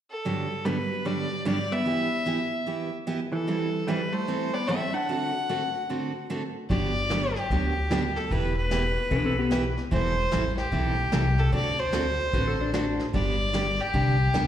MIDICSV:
0, 0, Header, 1, 7, 480
1, 0, Start_track
1, 0, Key_signature, 1, "major"
1, 0, Tempo, 402685
1, 296, Time_signature, 4, 2, 24, 8
1, 17251, End_track
2, 0, Start_track
2, 0, Title_t, "Fiddle"
2, 0, Program_c, 0, 110
2, 130, Note_on_c, 0, 69, 77
2, 771, Note_on_c, 0, 71, 79
2, 789, Note_off_c, 0, 69, 0
2, 1257, Note_on_c, 0, 74, 90
2, 1275, Note_off_c, 0, 71, 0
2, 1739, Note_off_c, 0, 74, 0
2, 1747, Note_on_c, 0, 74, 95
2, 2053, Note_on_c, 0, 76, 101
2, 2071, Note_off_c, 0, 74, 0
2, 3493, Note_off_c, 0, 76, 0
2, 3969, Note_on_c, 0, 69, 75
2, 4621, Note_on_c, 0, 71, 87
2, 4639, Note_off_c, 0, 69, 0
2, 4929, Note_on_c, 0, 72, 90
2, 4947, Note_off_c, 0, 71, 0
2, 5409, Note_on_c, 0, 74, 88
2, 5427, Note_off_c, 0, 72, 0
2, 5571, Note_on_c, 0, 76, 92
2, 5589, Note_off_c, 0, 74, 0
2, 5878, Note_on_c, 0, 78, 99
2, 5896, Note_off_c, 0, 76, 0
2, 7499, Note_off_c, 0, 78, 0
2, 7980, Note_on_c, 0, 74, 99
2, 8774, Note_on_c, 0, 67, 86
2, 8791, Note_off_c, 0, 74, 0
2, 9727, Note_on_c, 0, 69, 82
2, 9745, Note_off_c, 0, 67, 0
2, 9909, Note_on_c, 0, 71, 90
2, 9927, Note_off_c, 0, 69, 0
2, 10203, Note_off_c, 0, 71, 0
2, 10210, Note_on_c, 0, 71, 95
2, 11602, Note_off_c, 0, 71, 0
2, 11818, Note_on_c, 0, 72, 99
2, 12560, Note_off_c, 0, 72, 0
2, 12611, Note_on_c, 0, 67, 91
2, 13579, Note_on_c, 0, 69, 87
2, 13597, Note_off_c, 0, 67, 0
2, 13746, Note_off_c, 0, 69, 0
2, 13751, Note_on_c, 0, 74, 99
2, 14058, Note_on_c, 0, 72, 104
2, 14076, Note_off_c, 0, 74, 0
2, 15491, Note_off_c, 0, 72, 0
2, 15666, Note_on_c, 0, 74, 104
2, 16454, Note_on_c, 0, 67, 102
2, 16471, Note_off_c, 0, 74, 0
2, 17251, Note_off_c, 0, 67, 0
2, 17251, End_track
3, 0, Start_track
3, 0, Title_t, "Electric slide guitar"
3, 0, Program_c, 1, 29
3, 10859, Note_on_c, 1, 62, 75
3, 10865, Note_on_c, 1, 71, 94
3, 11019, Note_on_c, 1, 60, 70
3, 11020, Note_off_c, 1, 71, 0
3, 11022, Note_off_c, 1, 62, 0
3, 11033, Note_on_c, 1, 69, 83
3, 11171, Note_off_c, 1, 60, 0
3, 11184, Note_off_c, 1, 69, 0
3, 11189, Note_on_c, 1, 59, 71
3, 11197, Note_on_c, 1, 67, 80
3, 11336, Note_off_c, 1, 59, 0
3, 11346, Note_off_c, 1, 67, 0
3, 11352, Note_on_c, 1, 71, 93
3, 11730, Note_off_c, 1, 71, 0
3, 14710, Note_on_c, 1, 71, 78
3, 14860, Note_off_c, 1, 71, 0
3, 14870, Note_on_c, 1, 69, 73
3, 15020, Note_off_c, 1, 69, 0
3, 15032, Note_on_c, 1, 62, 78
3, 15177, Note_off_c, 1, 62, 0
3, 15192, Note_on_c, 1, 62, 94
3, 15567, Note_off_c, 1, 62, 0
3, 17251, End_track
4, 0, Start_track
4, 0, Title_t, "Steel-string acoustic guitar"
4, 0, Program_c, 2, 25
4, 298, Note_on_c, 2, 43, 55
4, 305, Note_on_c, 2, 50, 57
4, 305, Note_on_c, 2, 54, 58
4, 307, Note_on_c, 2, 59, 55
4, 308, Note_on_c, 2, 62, 58
4, 312, Note_on_c, 2, 67, 55
4, 558, Note_off_c, 2, 43, 0
4, 561, Note_off_c, 2, 50, 0
4, 561, Note_off_c, 2, 54, 0
4, 562, Note_off_c, 2, 59, 0
4, 563, Note_off_c, 2, 62, 0
4, 565, Note_off_c, 2, 67, 0
4, 777, Note_on_c, 2, 43, 63
4, 778, Note_on_c, 2, 50, 66
4, 780, Note_on_c, 2, 54, 65
4, 784, Note_on_c, 2, 59, 71
4, 786, Note_on_c, 2, 62, 64
4, 788, Note_on_c, 2, 67, 71
4, 915, Note_off_c, 2, 43, 0
4, 916, Note_off_c, 2, 50, 0
4, 917, Note_off_c, 2, 54, 0
4, 919, Note_off_c, 2, 59, 0
4, 920, Note_off_c, 2, 62, 0
4, 921, Note_off_c, 2, 67, 0
4, 1251, Note_on_c, 2, 43, 54
4, 1256, Note_on_c, 2, 50, 55
4, 1258, Note_on_c, 2, 54, 52
4, 1261, Note_on_c, 2, 59, 55
4, 1262, Note_on_c, 2, 67, 53
4, 1263, Note_on_c, 2, 62, 56
4, 1516, Note_off_c, 2, 43, 0
4, 1518, Note_off_c, 2, 50, 0
4, 1519, Note_off_c, 2, 54, 0
4, 1521, Note_off_c, 2, 59, 0
4, 1521, Note_off_c, 2, 62, 0
4, 1521, Note_off_c, 2, 67, 0
4, 1732, Note_on_c, 2, 43, 72
4, 1734, Note_on_c, 2, 50, 76
4, 1740, Note_on_c, 2, 54, 66
4, 1742, Note_on_c, 2, 59, 75
4, 1742, Note_on_c, 2, 62, 81
4, 1747, Note_on_c, 2, 67, 71
4, 1874, Note_off_c, 2, 43, 0
4, 1875, Note_off_c, 2, 50, 0
4, 1878, Note_off_c, 2, 54, 0
4, 1878, Note_off_c, 2, 59, 0
4, 1879, Note_off_c, 2, 62, 0
4, 1881, Note_off_c, 2, 67, 0
4, 2210, Note_on_c, 2, 52, 52
4, 2213, Note_on_c, 2, 59, 54
4, 2217, Note_on_c, 2, 64, 55
4, 2226, Note_on_c, 2, 67, 55
4, 2476, Note_off_c, 2, 52, 0
4, 2477, Note_off_c, 2, 59, 0
4, 2480, Note_off_c, 2, 64, 0
4, 2484, Note_off_c, 2, 67, 0
4, 2690, Note_on_c, 2, 52, 66
4, 2697, Note_on_c, 2, 59, 72
4, 2701, Note_on_c, 2, 64, 73
4, 2703, Note_on_c, 2, 67, 79
4, 2834, Note_off_c, 2, 52, 0
4, 2837, Note_off_c, 2, 59, 0
4, 2839, Note_off_c, 2, 64, 0
4, 2840, Note_off_c, 2, 67, 0
4, 3175, Note_on_c, 2, 52, 50
4, 3180, Note_on_c, 2, 59, 55
4, 3186, Note_on_c, 2, 64, 53
4, 3191, Note_on_c, 2, 67, 62
4, 3439, Note_off_c, 2, 52, 0
4, 3442, Note_off_c, 2, 59, 0
4, 3445, Note_off_c, 2, 64, 0
4, 3447, Note_off_c, 2, 67, 0
4, 3657, Note_on_c, 2, 52, 74
4, 3661, Note_on_c, 2, 59, 74
4, 3666, Note_on_c, 2, 64, 72
4, 3668, Note_on_c, 2, 67, 76
4, 3798, Note_off_c, 2, 52, 0
4, 3800, Note_off_c, 2, 59, 0
4, 3802, Note_off_c, 2, 64, 0
4, 3803, Note_off_c, 2, 67, 0
4, 4140, Note_on_c, 2, 52, 53
4, 4144, Note_on_c, 2, 55, 56
4, 4147, Note_on_c, 2, 60, 57
4, 4151, Note_on_c, 2, 64, 60
4, 4154, Note_on_c, 2, 69, 60
4, 4403, Note_off_c, 2, 52, 0
4, 4405, Note_off_c, 2, 55, 0
4, 4406, Note_off_c, 2, 60, 0
4, 4408, Note_off_c, 2, 64, 0
4, 4410, Note_off_c, 2, 69, 0
4, 4622, Note_on_c, 2, 52, 71
4, 4628, Note_on_c, 2, 55, 73
4, 4629, Note_on_c, 2, 60, 70
4, 4634, Note_on_c, 2, 64, 74
4, 4635, Note_on_c, 2, 69, 71
4, 4761, Note_off_c, 2, 52, 0
4, 4764, Note_off_c, 2, 55, 0
4, 4765, Note_off_c, 2, 60, 0
4, 4767, Note_off_c, 2, 64, 0
4, 4768, Note_off_c, 2, 69, 0
4, 5096, Note_on_c, 2, 52, 46
4, 5103, Note_on_c, 2, 55, 57
4, 5106, Note_on_c, 2, 60, 58
4, 5107, Note_on_c, 2, 64, 57
4, 5111, Note_on_c, 2, 69, 57
4, 5361, Note_off_c, 2, 52, 0
4, 5364, Note_off_c, 2, 55, 0
4, 5366, Note_off_c, 2, 60, 0
4, 5367, Note_off_c, 2, 64, 0
4, 5369, Note_off_c, 2, 69, 0
4, 5582, Note_on_c, 2, 52, 71
4, 5586, Note_on_c, 2, 55, 67
4, 5591, Note_on_c, 2, 60, 72
4, 5591, Note_on_c, 2, 64, 72
4, 5593, Note_on_c, 2, 69, 80
4, 5721, Note_off_c, 2, 52, 0
4, 5724, Note_off_c, 2, 55, 0
4, 5726, Note_off_c, 2, 60, 0
4, 5726, Note_off_c, 2, 64, 0
4, 5727, Note_off_c, 2, 69, 0
4, 6065, Note_on_c, 2, 50, 53
4, 6066, Note_on_c, 2, 57, 51
4, 6071, Note_on_c, 2, 60, 53
4, 6074, Note_on_c, 2, 66, 51
4, 6079, Note_on_c, 2, 69, 57
4, 6326, Note_off_c, 2, 50, 0
4, 6327, Note_off_c, 2, 57, 0
4, 6329, Note_off_c, 2, 60, 0
4, 6330, Note_off_c, 2, 66, 0
4, 6333, Note_off_c, 2, 69, 0
4, 6547, Note_on_c, 2, 50, 68
4, 6549, Note_on_c, 2, 57, 73
4, 6556, Note_on_c, 2, 60, 70
4, 6558, Note_on_c, 2, 66, 68
4, 6562, Note_on_c, 2, 69, 67
4, 6685, Note_off_c, 2, 50, 0
4, 6686, Note_off_c, 2, 57, 0
4, 6689, Note_off_c, 2, 60, 0
4, 6690, Note_off_c, 2, 66, 0
4, 6692, Note_off_c, 2, 69, 0
4, 7026, Note_on_c, 2, 50, 55
4, 7030, Note_on_c, 2, 57, 55
4, 7033, Note_on_c, 2, 60, 53
4, 7035, Note_on_c, 2, 66, 54
4, 7037, Note_on_c, 2, 69, 53
4, 7286, Note_off_c, 2, 50, 0
4, 7288, Note_off_c, 2, 57, 0
4, 7290, Note_off_c, 2, 60, 0
4, 7291, Note_off_c, 2, 66, 0
4, 7292, Note_off_c, 2, 69, 0
4, 7507, Note_on_c, 2, 50, 73
4, 7511, Note_on_c, 2, 57, 70
4, 7512, Note_on_c, 2, 60, 71
4, 7519, Note_on_c, 2, 66, 76
4, 7521, Note_on_c, 2, 69, 73
4, 7645, Note_off_c, 2, 50, 0
4, 7647, Note_off_c, 2, 57, 0
4, 7647, Note_off_c, 2, 60, 0
4, 7651, Note_off_c, 2, 66, 0
4, 7652, Note_off_c, 2, 69, 0
4, 7990, Note_on_c, 2, 50, 60
4, 7992, Note_on_c, 2, 54, 57
4, 7994, Note_on_c, 2, 59, 57
4, 7999, Note_on_c, 2, 67, 63
4, 8001, Note_on_c, 2, 62, 59
4, 8249, Note_off_c, 2, 50, 0
4, 8250, Note_off_c, 2, 54, 0
4, 8251, Note_off_c, 2, 59, 0
4, 8253, Note_off_c, 2, 67, 0
4, 8254, Note_off_c, 2, 62, 0
4, 8472, Note_on_c, 2, 50, 64
4, 8474, Note_on_c, 2, 54, 69
4, 8477, Note_on_c, 2, 59, 66
4, 8481, Note_on_c, 2, 62, 78
4, 8485, Note_on_c, 2, 67, 70
4, 8607, Note_off_c, 2, 50, 0
4, 8608, Note_off_c, 2, 54, 0
4, 8609, Note_off_c, 2, 59, 0
4, 8611, Note_off_c, 2, 62, 0
4, 8613, Note_off_c, 2, 67, 0
4, 8950, Note_on_c, 2, 50, 54
4, 8957, Note_on_c, 2, 54, 52
4, 8960, Note_on_c, 2, 59, 61
4, 8962, Note_on_c, 2, 62, 56
4, 8965, Note_on_c, 2, 67, 63
4, 9209, Note_off_c, 2, 50, 0
4, 9212, Note_off_c, 2, 54, 0
4, 9214, Note_off_c, 2, 59, 0
4, 9214, Note_off_c, 2, 62, 0
4, 9216, Note_off_c, 2, 67, 0
4, 9426, Note_on_c, 2, 50, 73
4, 9433, Note_on_c, 2, 54, 73
4, 9434, Note_on_c, 2, 59, 76
4, 9436, Note_on_c, 2, 62, 80
4, 9437, Note_on_c, 2, 67, 80
4, 9564, Note_off_c, 2, 50, 0
4, 9567, Note_off_c, 2, 54, 0
4, 9568, Note_off_c, 2, 59, 0
4, 9569, Note_off_c, 2, 62, 0
4, 9569, Note_off_c, 2, 67, 0
4, 9909, Note_on_c, 2, 52, 54
4, 9916, Note_on_c, 2, 59, 52
4, 9920, Note_on_c, 2, 64, 57
4, 9921, Note_on_c, 2, 67, 64
4, 10167, Note_off_c, 2, 52, 0
4, 10171, Note_off_c, 2, 59, 0
4, 10173, Note_off_c, 2, 64, 0
4, 10173, Note_off_c, 2, 67, 0
4, 10382, Note_on_c, 2, 52, 73
4, 10386, Note_on_c, 2, 59, 73
4, 10390, Note_on_c, 2, 64, 73
4, 10395, Note_on_c, 2, 67, 74
4, 10521, Note_off_c, 2, 52, 0
4, 10523, Note_off_c, 2, 59, 0
4, 10525, Note_off_c, 2, 64, 0
4, 10528, Note_off_c, 2, 67, 0
4, 10855, Note_on_c, 2, 52, 54
4, 10859, Note_on_c, 2, 59, 54
4, 10864, Note_on_c, 2, 64, 61
4, 10867, Note_on_c, 2, 67, 62
4, 11120, Note_off_c, 2, 52, 0
4, 11122, Note_off_c, 2, 59, 0
4, 11124, Note_off_c, 2, 64, 0
4, 11126, Note_off_c, 2, 67, 0
4, 11330, Note_on_c, 2, 52, 68
4, 11335, Note_on_c, 2, 59, 80
4, 11343, Note_on_c, 2, 64, 78
4, 11344, Note_on_c, 2, 67, 80
4, 11475, Note_off_c, 2, 52, 0
4, 11477, Note_off_c, 2, 59, 0
4, 11481, Note_off_c, 2, 64, 0
4, 11482, Note_off_c, 2, 67, 0
4, 11814, Note_on_c, 2, 52, 60
4, 11822, Note_on_c, 2, 55, 61
4, 11825, Note_on_c, 2, 60, 58
4, 11827, Note_on_c, 2, 64, 66
4, 11828, Note_on_c, 2, 69, 68
4, 12079, Note_off_c, 2, 52, 0
4, 12083, Note_off_c, 2, 55, 0
4, 12084, Note_off_c, 2, 60, 0
4, 12085, Note_off_c, 2, 64, 0
4, 12086, Note_off_c, 2, 69, 0
4, 12294, Note_on_c, 2, 52, 66
4, 12298, Note_on_c, 2, 55, 65
4, 12300, Note_on_c, 2, 60, 74
4, 12303, Note_on_c, 2, 64, 78
4, 12306, Note_on_c, 2, 69, 80
4, 12436, Note_off_c, 2, 52, 0
4, 12438, Note_off_c, 2, 55, 0
4, 12439, Note_off_c, 2, 60, 0
4, 12441, Note_off_c, 2, 64, 0
4, 12442, Note_off_c, 2, 69, 0
4, 12775, Note_on_c, 2, 52, 58
4, 12777, Note_on_c, 2, 55, 56
4, 12782, Note_on_c, 2, 60, 56
4, 12783, Note_on_c, 2, 64, 60
4, 12787, Note_on_c, 2, 69, 64
4, 13038, Note_off_c, 2, 52, 0
4, 13040, Note_off_c, 2, 55, 0
4, 13042, Note_off_c, 2, 60, 0
4, 13043, Note_off_c, 2, 64, 0
4, 13045, Note_off_c, 2, 69, 0
4, 13256, Note_on_c, 2, 52, 72
4, 13258, Note_on_c, 2, 55, 73
4, 13261, Note_on_c, 2, 60, 69
4, 13265, Note_on_c, 2, 64, 74
4, 13266, Note_on_c, 2, 69, 78
4, 13396, Note_off_c, 2, 52, 0
4, 13398, Note_off_c, 2, 55, 0
4, 13399, Note_off_c, 2, 60, 0
4, 13401, Note_off_c, 2, 64, 0
4, 13401, Note_off_c, 2, 69, 0
4, 13735, Note_on_c, 2, 50, 54
4, 13736, Note_on_c, 2, 57, 50
4, 13741, Note_on_c, 2, 60, 56
4, 13745, Note_on_c, 2, 66, 60
4, 13747, Note_on_c, 2, 69, 63
4, 13998, Note_off_c, 2, 50, 0
4, 13998, Note_off_c, 2, 57, 0
4, 14001, Note_off_c, 2, 60, 0
4, 14003, Note_off_c, 2, 66, 0
4, 14004, Note_off_c, 2, 69, 0
4, 14214, Note_on_c, 2, 50, 69
4, 14218, Note_on_c, 2, 57, 69
4, 14224, Note_on_c, 2, 60, 75
4, 14225, Note_on_c, 2, 66, 76
4, 14228, Note_on_c, 2, 69, 76
4, 14355, Note_off_c, 2, 50, 0
4, 14357, Note_off_c, 2, 57, 0
4, 14359, Note_off_c, 2, 60, 0
4, 14360, Note_off_c, 2, 66, 0
4, 14362, Note_off_c, 2, 69, 0
4, 14702, Note_on_c, 2, 50, 53
4, 14706, Note_on_c, 2, 57, 52
4, 14709, Note_on_c, 2, 60, 59
4, 14712, Note_on_c, 2, 66, 60
4, 14715, Note_on_c, 2, 69, 56
4, 14960, Note_off_c, 2, 50, 0
4, 14963, Note_off_c, 2, 57, 0
4, 14964, Note_off_c, 2, 60, 0
4, 14965, Note_off_c, 2, 66, 0
4, 14967, Note_off_c, 2, 69, 0
4, 15181, Note_on_c, 2, 50, 74
4, 15182, Note_on_c, 2, 57, 74
4, 15185, Note_on_c, 2, 60, 70
4, 15188, Note_on_c, 2, 66, 73
4, 15189, Note_on_c, 2, 69, 79
4, 15317, Note_off_c, 2, 50, 0
4, 15318, Note_off_c, 2, 57, 0
4, 15319, Note_off_c, 2, 60, 0
4, 15321, Note_off_c, 2, 66, 0
4, 15321, Note_off_c, 2, 69, 0
4, 15656, Note_on_c, 2, 50, 54
4, 15664, Note_on_c, 2, 55, 57
4, 15665, Note_on_c, 2, 59, 57
4, 15665, Note_on_c, 2, 62, 59
4, 15671, Note_on_c, 2, 67, 64
4, 15917, Note_off_c, 2, 50, 0
4, 15921, Note_off_c, 2, 55, 0
4, 15921, Note_off_c, 2, 59, 0
4, 15921, Note_off_c, 2, 62, 0
4, 15924, Note_off_c, 2, 67, 0
4, 16132, Note_on_c, 2, 50, 73
4, 16138, Note_on_c, 2, 55, 69
4, 16140, Note_on_c, 2, 59, 74
4, 16142, Note_on_c, 2, 62, 71
4, 16144, Note_on_c, 2, 67, 72
4, 16272, Note_off_c, 2, 50, 0
4, 16275, Note_off_c, 2, 55, 0
4, 16276, Note_off_c, 2, 59, 0
4, 16277, Note_off_c, 2, 62, 0
4, 16278, Note_off_c, 2, 67, 0
4, 16611, Note_on_c, 2, 50, 55
4, 16615, Note_on_c, 2, 55, 55
4, 16619, Note_on_c, 2, 59, 54
4, 16623, Note_on_c, 2, 62, 58
4, 16624, Note_on_c, 2, 67, 64
4, 16873, Note_off_c, 2, 50, 0
4, 16875, Note_off_c, 2, 55, 0
4, 16877, Note_off_c, 2, 59, 0
4, 16879, Note_off_c, 2, 62, 0
4, 16880, Note_off_c, 2, 67, 0
4, 17089, Note_on_c, 2, 50, 70
4, 17095, Note_on_c, 2, 55, 75
4, 17099, Note_on_c, 2, 59, 81
4, 17102, Note_on_c, 2, 62, 79
4, 17103, Note_on_c, 2, 67, 87
4, 17230, Note_off_c, 2, 50, 0
4, 17233, Note_off_c, 2, 55, 0
4, 17234, Note_off_c, 2, 59, 0
4, 17236, Note_off_c, 2, 62, 0
4, 17237, Note_off_c, 2, 67, 0
4, 17251, End_track
5, 0, Start_track
5, 0, Title_t, "Hollow-body jazz guitar"
5, 0, Program_c, 3, 26
5, 776, Note_on_c, 3, 55, 67
5, 1243, Note_off_c, 3, 55, 0
5, 1257, Note_on_c, 3, 55, 76
5, 1723, Note_off_c, 3, 55, 0
5, 1737, Note_on_c, 3, 55, 80
5, 2052, Note_off_c, 3, 55, 0
5, 2052, Note_on_c, 3, 59, 77
5, 3493, Note_off_c, 3, 59, 0
5, 3964, Note_on_c, 3, 52, 68
5, 4575, Note_off_c, 3, 52, 0
5, 4619, Note_on_c, 3, 55, 72
5, 4916, Note_off_c, 3, 55, 0
5, 4916, Note_on_c, 3, 57, 72
5, 5407, Note_off_c, 3, 57, 0
5, 5407, Note_on_c, 3, 59, 73
5, 5583, Note_off_c, 3, 59, 0
5, 5583, Note_on_c, 3, 60, 80
5, 5888, Note_off_c, 3, 60, 0
5, 5888, Note_on_c, 3, 62, 79
5, 7504, Note_off_c, 3, 62, 0
5, 17251, End_track
6, 0, Start_track
6, 0, Title_t, "Upright bass"
6, 0, Program_c, 4, 32
6, 7987, Note_on_c, 4, 31, 87
6, 8755, Note_off_c, 4, 31, 0
6, 8946, Note_on_c, 4, 38, 78
6, 9713, Note_off_c, 4, 38, 0
6, 9904, Note_on_c, 4, 28, 82
6, 10672, Note_off_c, 4, 28, 0
6, 10861, Note_on_c, 4, 35, 79
6, 11629, Note_off_c, 4, 35, 0
6, 11822, Note_on_c, 4, 28, 89
6, 12206, Note_off_c, 4, 28, 0
6, 12307, Note_on_c, 4, 33, 76
6, 12713, Note_off_c, 4, 33, 0
6, 12782, Note_on_c, 4, 35, 80
6, 13190, Note_off_c, 4, 35, 0
6, 13261, Note_on_c, 4, 36, 88
6, 13668, Note_off_c, 4, 36, 0
6, 13739, Note_on_c, 4, 38, 84
6, 14507, Note_off_c, 4, 38, 0
6, 14702, Note_on_c, 4, 33, 79
6, 15468, Note_off_c, 4, 33, 0
6, 15661, Note_on_c, 4, 31, 84
6, 16426, Note_off_c, 4, 31, 0
6, 16617, Note_on_c, 4, 36, 83
6, 17024, Note_off_c, 4, 36, 0
6, 17107, Note_on_c, 4, 35, 84
6, 17251, Note_off_c, 4, 35, 0
6, 17251, End_track
7, 0, Start_track
7, 0, Title_t, "Drums"
7, 7985, Note_on_c, 9, 36, 31
7, 7986, Note_on_c, 9, 25, 44
7, 8104, Note_off_c, 9, 36, 0
7, 8463, Note_on_c, 9, 38, 70
7, 8463, Note_on_c, 9, 44, 58
7, 8582, Note_off_c, 9, 38, 0
7, 8582, Note_off_c, 9, 44, 0
7, 8771, Note_on_c, 9, 38, 38
7, 8890, Note_off_c, 9, 38, 0
7, 8943, Note_off_c, 9, 25, 0
7, 8943, Note_on_c, 9, 25, 47
7, 8943, Note_on_c, 9, 36, 34
7, 9063, Note_off_c, 9, 36, 0
7, 9423, Note_on_c, 9, 38, 70
7, 9423, Note_on_c, 9, 44, 62
7, 9543, Note_off_c, 9, 38, 0
7, 9543, Note_off_c, 9, 44, 0
7, 9731, Note_on_c, 9, 38, 38
7, 9850, Note_off_c, 9, 38, 0
7, 9902, Note_on_c, 9, 36, 33
7, 9903, Note_off_c, 9, 25, 0
7, 9903, Note_on_c, 9, 25, 43
7, 10021, Note_off_c, 9, 36, 0
7, 10380, Note_on_c, 9, 38, 66
7, 10380, Note_on_c, 9, 44, 58
7, 10499, Note_off_c, 9, 38, 0
7, 10499, Note_off_c, 9, 44, 0
7, 10860, Note_off_c, 9, 25, 0
7, 10860, Note_on_c, 9, 25, 50
7, 10861, Note_on_c, 9, 36, 33
7, 10980, Note_off_c, 9, 36, 0
7, 11340, Note_on_c, 9, 38, 67
7, 11340, Note_on_c, 9, 44, 65
7, 11459, Note_off_c, 9, 38, 0
7, 11459, Note_off_c, 9, 44, 0
7, 11649, Note_on_c, 9, 38, 35
7, 11768, Note_off_c, 9, 38, 0
7, 11818, Note_off_c, 9, 25, 0
7, 11818, Note_on_c, 9, 25, 50
7, 11819, Note_on_c, 9, 36, 32
7, 11938, Note_off_c, 9, 36, 0
7, 12301, Note_on_c, 9, 38, 71
7, 12301, Note_on_c, 9, 44, 51
7, 12420, Note_off_c, 9, 38, 0
7, 12420, Note_off_c, 9, 44, 0
7, 12606, Note_on_c, 9, 38, 39
7, 12726, Note_off_c, 9, 38, 0
7, 12776, Note_off_c, 9, 25, 0
7, 12776, Note_on_c, 9, 25, 48
7, 12778, Note_on_c, 9, 36, 33
7, 12897, Note_off_c, 9, 36, 0
7, 13255, Note_on_c, 9, 38, 66
7, 13255, Note_on_c, 9, 44, 58
7, 13374, Note_off_c, 9, 38, 0
7, 13374, Note_off_c, 9, 44, 0
7, 13566, Note_on_c, 9, 38, 35
7, 13685, Note_off_c, 9, 38, 0
7, 13739, Note_on_c, 9, 36, 34
7, 13740, Note_off_c, 9, 25, 0
7, 13740, Note_on_c, 9, 25, 51
7, 13858, Note_off_c, 9, 36, 0
7, 14217, Note_on_c, 9, 38, 72
7, 14217, Note_on_c, 9, 44, 63
7, 14336, Note_off_c, 9, 38, 0
7, 14336, Note_off_c, 9, 44, 0
7, 14700, Note_on_c, 9, 36, 32
7, 14701, Note_off_c, 9, 25, 0
7, 14701, Note_on_c, 9, 25, 49
7, 14820, Note_off_c, 9, 36, 0
7, 15181, Note_on_c, 9, 38, 70
7, 15181, Note_on_c, 9, 44, 62
7, 15300, Note_off_c, 9, 38, 0
7, 15300, Note_off_c, 9, 44, 0
7, 15490, Note_on_c, 9, 38, 35
7, 15609, Note_off_c, 9, 38, 0
7, 15660, Note_off_c, 9, 25, 0
7, 15660, Note_on_c, 9, 25, 43
7, 15660, Note_on_c, 9, 36, 32
7, 15779, Note_off_c, 9, 36, 0
7, 16137, Note_on_c, 9, 38, 65
7, 16137, Note_on_c, 9, 44, 66
7, 16256, Note_off_c, 9, 38, 0
7, 16256, Note_off_c, 9, 44, 0
7, 16446, Note_on_c, 9, 38, 39
7, 16565, Note_off_c, 9, 38, 0
7, 16617, Note_on_c, 9, 36, 36
7, 16619, Note_off_c, 9, 25, 0
7, 16619, Note_on_c, 9, 25, 54
7, 16736, Note_off_c, 9, 36, 0
7, 17094, Note_on_c, 9, 38, 67
7, 17094, Note_on_c, 9, 44, 61
7, 17213, Note_off_c, 9, 38, 0
7, 17213, Note_off_c, 9, 44, 0
7, 17251, Note_off_c, 9, 25, 0
7, 17251, End_track
0, 0, End_of_file